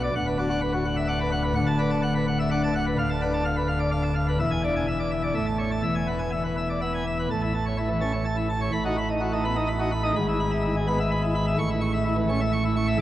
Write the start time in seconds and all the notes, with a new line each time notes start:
Already playing: B1 B2
0.04 D5
0.16 D1 D2 F#5
0.27 B4
0.39 D4 F#4
0.50 F#5
0.61 B4
0.73 F#4
0.85 F#5
0.97 E5
1.08 D4 F#5
1.21 B4
1.32 F#5
1.44 B4
1.55 D1 D2 F#5
1.67 A5
1.79 D4 B4
1.91 A5
2.03 F#5
2.15 B4
2.28 F#5
2.39 E5
2.51 D4 F#5
2.63 A5
2.75 F#5
2.87 B4
2.98 D1 D2 F5
3.10 A5
3.21 D4 B4
3.33 A5
3.45 F5
3.57 B4
3.68 F5
3.80 D5
3.91 D4 F5
4.03 A5
4.15 F5
4.28 B4
4.39 E1 E2 E5
4.51 G#5
4.64 D4 D5
4.76 G#5
4.88 E5
5.00 D5
5.11 E5
5.23 D5
5.35 A1 A2 E5
5.46 A5
5.58 C#5
5.71 A5
5.83 E1 E2 E5
5.95 G#5
6.07 B3 B4
6.19 G#5
6.32 E5
6.44 B4
6.57 E5
6.70 D5
6.81 B3 E5
6.95 G#5
7.07 E5
7.19 B4
7.31 A1 A2 A5
7.42 E4
7.54 A5
7.66 C#5
7.77 E4
7.89 E3
8.01 C#4 A5
8.13 C#5
8.25 A5
8.37 E4
8.49 A5
8.61 C#5
8.72 A1 A2 B5
8.85 D#4 F#4
8.98 B5
9.09 D#4 D#5
9.20 F#4
9.33 A3 D#4
9.45 B3 B5
9.56 D#4 D#5
9.68 B5
9.80 D#4 F#4
9.92 B5
10.04 D#4 D#5
10.16 G#1 G#2 B5
10.29 E4
10.40 B5
10.52 E5
10.64 E4
10.76 G#3
10.87 B3 B5
11.00 E5
11.11 B5
11.24 E4
11.35 B5
11.47 E5
11.59 A1 A2 C#6
11.70 E4
11.81 C#6
11.93 E5
12.05 E4
12.17 E3
12.29 C#4 C#6
12.41 E5
12.52 C#6
12.64 E4
12.76 C#6
12.87 E5